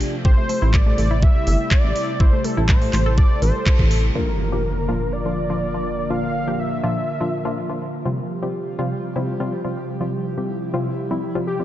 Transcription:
Already playing: analog synth pad C3 F3 A3 F4 G4, synth arpeggio sound D4
0.01 open hi-hat
0.25 analog synth bass A1, analog synth pad G3 E4, synth arpeggio sound G4, analog synth lead C5, kick
0.38 synth arpeggio sound A3
0.49 synth arpeggio sound A3, open hi-hat
0.62 analog synth bass A1, synth arpeggio sound E4
0.74 synth arpeggio sound A3, analog synth lead D5, kick, clap
0.86 synth arpeggio sound A3
0.98 analog synth bass A1, synth arpeggio sound A3, open hi-hat
1.11 synth arpeggio sound E4
1.23 analog synth lead E5, kick
1.47 analog synth bass G1, open hi-hat
1.71 analog synth lead D5, kick, clap
1.84 analog synth bass A1
1.96 open hi-hat
2.20 analog synth bass A1, synth arpeggio sound E4, analog synth lead C5, kick
2.33 synth arpeggio sound A3
2.44 synth arpeggio sound A3, analog synth lead A4, open hi-hat
2.57 analog synth bass A1, synth arpeggio sound E4
2.69 synth arpeggio sound A3, analog synth lead C5, kick, clap
2.82 synth arpeggio sound A3, open hi-hat
2.93 analog synth bass A1, synth arpeggio sound A3, clap, open hi-hat
3.06 synth arpeggio sound A4
3.18 analog synth lead D5, kick
3.42 analog synth bass A1, analog synth lead C5, open hi-hat
3.66 kick, clap
3.79 analog synth bass A1, kick
3.91 open hi-hat
4.15 synth pluck A#2 F3 A#3 D4 F4, analog synth pad D3 F3 A#3 F4 A#4, analog synth lead A#4, impact
4.52 synth pluck A#2 F3 A#3 D4 G4
4.88 synth pluck A#2 F3 A#3 D4 F4
5.13 analog synth lead D5
5.25 synth pluck A#2 F3 A#3 D4 F4
5.50 synth pluck A#2 F3 A#3 D4 F4
5.74 synth pluck A#2 F3 A#3 D4 F4
6.10 synth pluck A#2 F3 A#3 D4 F4, analog synth pad F4, analog synth lead F5
6.47 synth pluck A#2 F3 A#3 D4 G4
6.59 analog synth lead E5
6.83 synth pluck A#2 F3 A#3 D4 F4
7.21 synth pluck A#2 F3 A#3 D4 F4
7.45 synth pluck A#2 F3 A#3 D4 F4
7.69 synth pluck A#2 F3 A#3 D4 F4
8.05 synth pluck C3 F3 G3 C4 F4, analog synth pad C3 G3 F4 G4
8.43 synth pluck C3 F3 G3 C4 G4
8.79 synth pluck C3 F3 G3 C4 F4
9.16 synth pluck C3 F3 G3 C4 E4
9.40 synth pluck C3 F3 G3 C4 F4
9.64 synth pluck C3 F3 G3 C4 F4
10.01 synth pluck C3 F3 G3 C4 F4, analog synth pad E4
10.38 synth pluck C3 F3 G3 C4 G4
10.74 synth pluck C3 F3 G3 C4 F4
11.11 synth pluck C3 F3 G3 C4 E4
11.35 synth pluck C3 F3 G3 C4 F4
11.47 analog synth lead G4
11.60 synth pluck C3 F3 G3 C4 F4

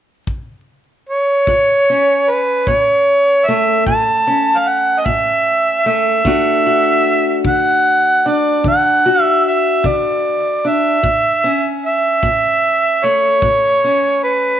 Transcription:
0.27 kick
1.09 harmonica C#5
1.47 steel-string acoustic guitar A2, kick
1.90 steel-string acoustic guitar C#4
2.30 harmonica B4
2.67 steel-string acoustic guitar A2, harmonica C#5, kick
3.47 steel-string acoustic guitar A3, harmonica E5
3.86 steel-string acoustic guitar A2, harmonica A5, kick
4.27 steel-string acoustic guitar C#4
4.58 harmonica F5
4.69 harmonica F#5
4.99 harmonica D#5
5.06 steel-string acoustic guitar A2, harmonica E5, kick
5.86 steel-string acoustic guitar A3, harmonica E5
6.25 steel-string acoustic guitar D3 A3 D4 F#4, kick
6.66 steel-string acoustic guitar F#4
7.45 steel-string acoustic guitar D3, harmonica F#5, kick
8.26 steel-string acoustic guitar D4, harmonica D5
8.64 steel-string acoustic guitar D3, harmonica F#5, kick
9.06 steel-string acoustic guitar F#4
9.22 harmonica E5
9.49 harmonica E5
9.84 steel-string acoustic guitar D3, harmonica D5, kick
10.65 steel-string acoustic guitar D4, harmonica E5
11.03 steel-string acoustic guitar A2, kick
11.44 steel-string acoustic guitar C#4
11.86 harmonica E5
12.23 steel-string acoustic guitar A2, kick
13.04 steel-string acoustic guitar A3, harmonica C#5
13.42 steel-string acoustic guitar A2, kick
13.84 steel-string acoustic guitar C#4
14.23 harmonica B4

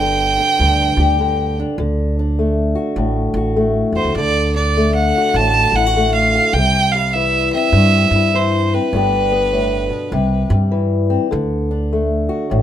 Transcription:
Already playing: upright bass G1, steel-string acoustic guitar G2 B3 D4 G4, fiddle G5
0.01 steel-string acoustic guitar D3
0.40 steel-string acoustic guitar D4
0.60 upright bass D2, steel-string acoustic guitar G2
0.97 upright bass D2, steel-string acoustic guitar G4
1.20 steel-string acoustic guitar D3
1.60 steel-string acoustic guitar D4
1.78 upright bass D2, steel-string acoustic guitar D3
2.19 steel-string acoustic guitar D4
2.39 steel-string acoustic guitar A3
2.75 steel-string acoustic guitar F#4
2.96 upright bass A1, steel-string acoustic guitar A2
3.34 upright bass A1, steel-string acoustic guitar F#4
3.56 steel-string acoustic guitar A3
3.92 upright bass E2, steel-string acoustic guitar F#4, fiddle C5
4.05 upright bass D2
4.15 upright bass D2, steel-string acoustic guitar D3, fiddle D5
4.56 steel-string acoustic guitar D4, fiddle D5
4.77 steel-string acoustic guitar A3
4.94 fiddle F#5
5.17 steel-string acoustic guitar F#4
5.34 upright bass A1, steel-string acoustic guitar A2, fiddle A5
5.72 upright bass A1, fiddle F#5
5.76 steel-string acoustic guitar E4
5.86 steel-string acoustic guitar F#4
5.97 steel-string acoustic guitar A3
6.14 fiddle F5
6.35 steel-string acoustic guitar F#4
6.53 upright bass C2, steel-string acoustic guitar C3, fiddle G5
6.92 steel-string acoustic guitar G3, fiddle F5
7.13 steel-string acoustic guitar E3, fiddle E5
7.52 steel-string acoustic guitar C4, fiddle E5
7.72 upright bass G2
7.77 steel-string acoustic guitar G2
8.11 upright bass G2
8.15 steel-string acoustic guitar E4
8.34 steel-string acoustic guitar E3, fiddle C5
8.74 steel-string acoustic guitar C4, fiddle B4
8.93 upright bass G1, steel-string acoustic guitar G2 D3 B3 D4 G4
9.32 steel-string acoustic guitar B3
9.52 steel-string acoustic guitar A2
9.89 steel-string acoustic guitar B2
10.12 upright bass C2, steel-string acoustic guitar C3
10.50 upright bass G2, steel-string acoustic guitar G3
10.71 steel-string acoustic guitar E3
11.10 steel-string acoustic guitar C4
11.31 upright bass D2, steel-string acoustic guitar D3
11.71 steel-string acoustic guitar D4
11.93 steel-string acoustic guitar A3
12.29 steel-string acoustic guitar F#4
12.50 upright bass A1, steel-string acoustic guitar A2

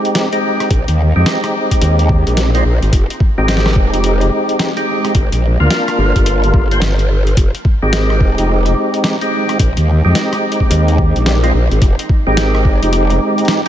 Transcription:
Already playing: tonewheel organ G#3 C4 D#4 G4, ambient pad G#3 D#4
0.05 closed hi-hat
0.15 snare, closed hi-hat
0.33 tonewheel organ G#3 C4 D#4 G4, closed hi-hat
0.60 cross-stick, closed hi-hat
0.71 wobble bass A#1, kick, closed hi-hat
0.88 wobble bass D#2, closed hi-hat
1.05 ambient pad A#4
1.16 wobble bass F2, tonewheel organ G#3 C4 D#4 G4
1.26 snare, closed hi-hat
1.44 cross-stick, closed hi-hat
1.71 kick, closed hi-hat
1.82 wobble bass D#2, closed hi-hat
1.99 closed hi-hat
2.09 kick
2.27 wobble bass A#1, closed hi-hat
2.37 snare, closed hi-hat
2.55 tonewheel organ G#3 C4 D#4 F4, closed hi-hat
2.65 wobble bass A#1
2.82 wobble bass G#1, closed hi-hat
2.93 wobble bass F1, kick, closed hi-hat
3.10 closed hi-hat
3.20 ambient pad G#3, kick
3.38 wobble bass G#1, tonewheel organ G#3 C4 D#4 G4
3.47 ambient pad G5, snare, closed hi-hat
3.57 snare
3.66 cross-stick, snare
3.71 snare
3.76 kick
3.93 wobble bass F1, closed hi-hat
4.04 closed hi-hat
4.21 closed hi-hat
4.49 closed hi-hat
4.59 snare, closed hi-hat
4.77 tonewheel organ G#3 C4 D#4 G4, closed hi-hat
5.05 cross-stick, closed hi-hat
5.15 wobble bass G1, ambient pad F4, kick, closed hi-hat
5.32 wobble bass A#1, closed hi-hat
5.60 wobble bass D2, tonewheel organ A#3 D4 F4 A#4
5.71 snare, closed hi-hat
5.88 cross-stick, closed hi-hat
5.98 wobble bass G1
6.16 wobble bass G1, ambient pad A#4, kick, closed hi-hat
6.26 closed hi-hat
6.44 closed hi-hat
6.54 wobble bass G1, kick
6.71 tonewheel organ A#3 D4 F4 C5, closed hi-hat
6.82 snare, closed hi-hat
6.99 closed hi-hat
7.27 closed hi-hat
7.37 wobble bass F1, ambient pad D#4, kick, closed hi-hat
7.55 closed hi-hat
7.65 kick
7.82 wobble bass G#1, tonewheel organ G#3 C4 D#4 G4, ambient pad G#3
7.93 snare, closed hi-hat
8.10 cross-stick
8.20 kick
8.38 wobble bass F1, closed hi-hat
8.66 closed hi-hat
8.94 closed hi-hat
9.04 snare, closed hi-hat
9.21 tonewheel organ G#3 C4 D#4 G4, closed hi-hat
9.49 cross-stick, closed hi-hat
9.59 wobble bass A#1, kick, closed hi-hat
9.77 wobble bass D#2, closed hi-hat
10.05 wobble bass F2, tonewheel organ G#3 C4 D#4 G4
10.15 snare, closed hi-hat
10.33 cross-stick, closed hi-hat
10.52 closed hi-hat
10.60 ambient pad A#4, kick
10.70 wobble bass D#2, closed hi-hat
10.88 closed hi-hat
10.98 kick
11.16 wobble bass A#1, closed hi-hat
11.26 snare, closed hi-hat
11.43 tonewheel organ G#3 C4 D#4 F4, closed hi-hat
11.54 wobble bass A#1
11.71 wobble bass G#1, closed hi-hat
11.82 wobble bass F1, kick, closed hi-hat
11.99 ambient pad G#3, closed hi-hat
12.09 kick
12.27 wobble bass G#1, tonewheel organ G#3 C4 D#4 G4
12.37 snare, closed hi-hat
12.55 cross-stick
12.64 wobble bass G1, kick
12.83 wobble bass F1, ambient pad G5, closed hi-hat
12.93 closed hi-hat
13.10 closed hi-hat
13.38 closed hi-hat
13.45 snare, closed hi-hat
13.48 closed hi-hat
13.58 closed hi-hat

